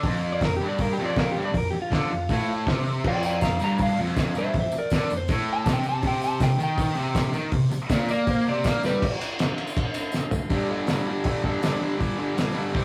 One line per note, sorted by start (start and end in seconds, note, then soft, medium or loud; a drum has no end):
0.03 0.41 F2 loud
0.03 kick loud
0.03 open hi-hat medium
0.32 0.43 D5 medium
0.41 0.57 F2 medium
0.41 0.56 A#4 medium
0.41 kick loud
0.41 snare loud
0.41 open hi-hat medium
0.56 0.67 G4 loud
0.60 0.98 G2 loud
0.68 0.80 D5 medium
0.78 0.93 A#4 loud
0.78 kick loud
0.78 open hi-hat medium
0.93 1.05 G4 loud
0.99 1.36 F2 loud
1.06 1.17 D5 loud
1.16 1.30 A#4 medium
1.16 kick loud
1.16 snare loud
1.16 open hi-hat medium
1.32 1.43 G4 medium
1.37 1.52 G2 loud
1.45 1.56 D5 loud
1.53 1.69 F2 medium
1.53 kick loud
1.53 open hi-hat medium
1.57 1.68 A#4 loud
1.71 1.81 G4 medium
1.71 muted distorted electric guitar stroke medium
1.82 2.54 F4 loud
1.91 2.10 D3 loud
1.91 kick loud
1.91 snare loud
1.91 open hi-hat medium
2.11 2.26 F2 medium
2.29 2.66 A2 loud
2.29 kick loud
2.29 open hi-hat medium
2.67 3.04 C3 loud
2.67 kick loud
2.67 snare loud
2.67 open hi-hat medium
3.04 3.41 F2 medium
3.04 3.24 D5 loud
3.04 3.25 G5 loud
3.04 kick loud
3.04 crash loud
3.04 tambourine soft
3.23 3.42 D5 medium
3.23 3.42 G5 medium
3.23 tambourine loud
3.41 3.57 F2 medium
3.41 3.60 F5 loud
3.41 3.60 A#5 medium
3.41 kick loud
3.41 snare loud
3.41 open hi-hat medium
3.41 tambourine loud
3.60 3.98 G2 loud
3.60 tambourine medium
3.64 3.80 F5 medium
3.64 3.81 A#5 loud
3.78 kick loud
3.78 open hi-hat medium
3.78 tambourine medium
3.82 3.99 F5 loud
3.99 4.35 F2 loud
4.16 kick loud
4.16 snare loud
4.16 open hi-hat medium
4.16 tambourine medium
4.35 4.54 G2 loud
4.35 4.56 C5 medium
4.35 tambourine medium
4.39 4.55 E5 loud
4.54 4.70 F2 medium
4.54 kick loud
4.54 open hi-hat medium
4.54 tambourine soft
4.60 4.75 C5 medium
4.60 4.76 E5 medium
4.72 muted distorted electric guitar stroke medium
4.72 tambourine loud
4.78 4.95 A#4 medium
4.78 4.94 D5 loud
4.90 5.10 D3 loud
4.90 kick loud
4.90 snare loud
4.90 open hi-hat medium
4.90 tambourine medium
4.96 5.12 A#4 medium
4.96 5.13 D5 loud
5.10 5.25 F2 medium
5.10 tambourine medium
5.17 5.32 C5 loud
5.28 5.65 A2 loud
5.28 kick loud
5.28 open hi-hat medium
5.28 tambourine medium
5.53 5.69 A5 loud
5.66 6.02 C3 loud
5.66 kick loud
5.66 snare loud
5.66 open hi-hat medium
5.66 tambourine medium
5.73 5.88 G5 medium
5.83 tambourine medium
5.89 6.05 A5 loud
6.02 6.39 C3 loud
6.02 kick loud
6.02 open hi-hat medium
6.02 tambourine soft
6.07 6.24 G5 loud
6.22 6.42 A5 loud
6.22 tambourine medium
6.40 6.56 C3 medium
6.40 6.61 G5 loud
6.40 kick loud
6.40 snare loud
6.40 open hi-hat medium
6.40 tambourine medium
6.58 6.95 D#3 loud
6.58 tambourine medium
6.63 7.34 G5 loud
6.78 kick loud
6.78 open hi-hat medium
6.78 tambourine medium
6.96 7.33 C3 loud
7.15 kick loud
7.15 snare loud
7.15 open hi-hat medium
7.15 tambourine medium
7.33 7.52 D#3 loud
7.33 tambourine medium
7.52 7.68 C3 medium
7.52 kick loud
7.52 open hi-hat medium
7.71 muted distorted electric guitar stroke medium
7.71 tambourine medium
7.89 8.09 A#2 loud
7.89 kick loud
7.89 snare loud
7.89 open hi-hat medium
7.89 tambourine loud
8.09 8.46 A#3 loud
8.09 8.28 D5 loud
8.09 tambourine medium
8.27 8.47 C5 loud
8.27 kick loud
8.27 open hi-hat medium
8.27 tambourine medium
8.45 8.64 C3 loud
8.45 8.84 D5 loud
8.45 tambourine soft
8.64 8.83 A#3 loud
8.64 kick loud
8.64 snare loud
8.64 open hi-hat medium
8.64 tambourine loud
8.83 9.02 G3 loud
8.83 9.03 B4 loud
8.83 snare medium
8.83 tambourine medium
9.02 kick loud
9.02 crash loud
9.02 tambourine soft
9.12 tambourine soft
9.21 ride medium
9.21 tambourine medium
9.31 tambourine soft
9.39 snare loud
9.39 ride loud
9.39 tambourine medium
9.58 ride medium
9.67 tambourine medium
9.77 kick loud
9.77 ride loud
9.94 ride medium
9.94 tambourine medium
10.12 snare medium
10.12 tambourine loud
10.23 tambourine soft
10.31 floor tom loud
10.31 tambourine medium
10.50 10.67 G2 medium
10.50 10.68 D3 medium
10.50 10.70 G3 loud
10.50 kick loud
10.50 open hi-hat medium
10.68 10.86 G2 medium
10.68 10.87 D3 medium
10.68 10.88 G3 medium
10.87 11.05 G2 loud
10.87 11.06 D3 loud
10.87 11.08 G3 loud
10.87 snare loud
10.87 open hi-hat medium
10.87 tambourine medium
11.06 11.23 G2 medium
11.06 11.24 D3 medium
11.06 11.24 G3 loud
11.24 11.42 G2 medium
11.24 11.42 D3 medium
11.24 11.44 G3 medium
11.24 kick loud
11.24 open hi-hat medium
11.43 11.60 G2 medium
11.43 11.62 D3 medium
11.43 11.62 G3 medium
11.43 kick medium
11.62 11.78 G2 loud
11.62 11.80 D3 loud
11.62 11.81 G3 loud
11.62 snare loud
11.62 open hi-hat medium
11.62 tambourine loud
11.79 11.96 G2 medium
11.79 11.97 D3 medium
11.79 11.99 G3 loud
11.98 12.16 G2 medium
11.98 12.17 D3 loud
11.98 12.18 G3 loud
11.98 kick loud
11.98 open hi-hat medium
12.17 12.34 G2 medium
12.17 12.35 D3 loud
12.17 12.36 G3 loud
12.35 12.53 G2 loud
12.35 12.54 D3 loud
12.35 12.55 G3 loud
12.35 snare loud
12.35 open hi-hat medium
12.35 tambourine medium
12.54 12.73 G2 loud
12.54 12.72 D3 medium
12.54 12.72 G3 loud
12.72 12.85 C3 medium
12.72 12.85 G3 medium
12.72 12.85 C4 loud
12.72 kick loud
12.72 open hi-hat medium